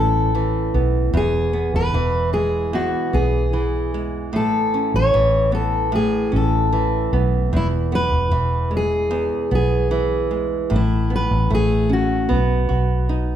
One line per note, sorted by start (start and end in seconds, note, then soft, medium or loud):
0.00 0.70 A1 medium
0.00 1.15 A2 medium
0.00 0.34 E3 medium
0.00 0.74 B3 medium
0.00 1.22 C#4 soft
0.00 0.71 A4 medium
0.35 1.94 E3 medium
0.74 1.11 B1 medium
0.74 1.53 B3 soft
1.13 1.70 E1 medium
1.13 2.72 E2 medium
1.13 1.75 G#4 medium
1.53 3.13 B3 medium
1.74 1.93 E1 medium
1.74 2.31 B4 medium
1.93 2.90 E1 medium
1.93 3.53 E3 medium
2.33 3.93 G#3 medium
2.33 2.71 G#4 medium
2.73 4.33 E2 medium
2.73 3.16 F#4 medium
3.13 4.34 B1 medium
3.13 4.74 B3 medium
3.13 3.90 G#4 medium
3.53 5.13 E3 medium
3.94 4.42 G#3 medium
4.33 4.89 A1 medium
4.33 5.91 A2 medium
4.33 4.95 A4 medium
4.74 6.31 C#4 medium
4.94 5.12 A1 medium
4.94 5.54 C#5 medium
5.14 6.29 A1 medium
5.14 6.72 E3 medium
5.52 7.12 B3 medium
5.52 5.91 A4 medium
5.92 7.52 A2 medium
5.92 6.31 G#4 medium
6.32 7.09 A1 medium
6.32 7.60 C#4 medium
6.36 7.10 A4 medium
6.73 8.31 E3 medium
7.13 7.49 B1 medium
7.13 7.92 B3 medium
7.53 8.08 E1 medium
7.53 9.09 E2 medium
7.53 7.67 E4 medium
7.92 9.51 B3 medium
7.92 8.76 B4 loud
8.12 8.30 E1 medium
8.31 9.27 E1 medium
8.31 9.91 E3 medium
8.71 10.30 G#3 medium
8.77 9.50 G#4 medium
9.11 10.71 E2 medium
9.51 10.67 B1 medium
9.51 11.10 B3 medium
9.51 10.29 G#4 medium
9.91 10.79 E3 medium
10.31 10.79 G#3 soft
10.70 11.27 A1 medium
10.70 12.38 A2 medium
10.76 11.15 E4 medium
11.10 12.29 B3 medium
11.16 11.54 B4 medium
11.31 11.49 A1 medium
11.50 12.27 A1 medium
11.50 12.28 A3 medium
11.55 11.90 G#4 medium
11.89 12.38 C#4 medium
11.89 13.36 F#4 medium
12.29 12.68 B1 medium
12.29 13.36 B3 medium
12.69 13.36 B1 medium
12.69 13.36 F#4 medium
13.09 13.36 D#4 medium